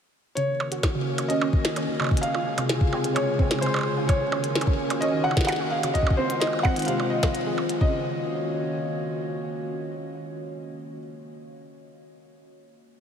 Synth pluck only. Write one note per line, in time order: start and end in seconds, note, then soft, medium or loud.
0.37 0.41 C#3 medium
0.72 0.79 F#4 medium
0.95 1.02 C#3 medium
1.30 1.37 C#4 loud
1.41 1.49 C#4 medium
1.76 1.84 C#4 loud
1.88 1.95 D#3 medium
2.00 2.04 C#3 medium
2.35 2.42 F4 medium
2.58 2.65 C3 medium
2.93 3.00 C4 loud
3.04 3.11 C4 medium
3.39 3.46 C4 loud
3.51 3.58 C#3 medium
3.62 3.67 C3 medium
3.97 4.04 F4 medium
4.21 4.28 C#3 medium
4.55 4.63 C#4 loud
4.67 4.74 C#4 medium
5.02 5.09 C#4 loud
5.14 5.21 D#3 medium
5.25 5.29 C#3 medium
5.60 5.67 F#4 medium
5.83 5.90 C#3 medium
6.18 6.25 C4 loud
6.30 6.37 C4 medium
6.65 6.72 C4 loud
6.76 6.84 D#3 medium
6.88 6.92 C3 medium
7.23 7.27 F3 medium
7.46 7.50 G#3 medium
7.81 8.03 C#3 medium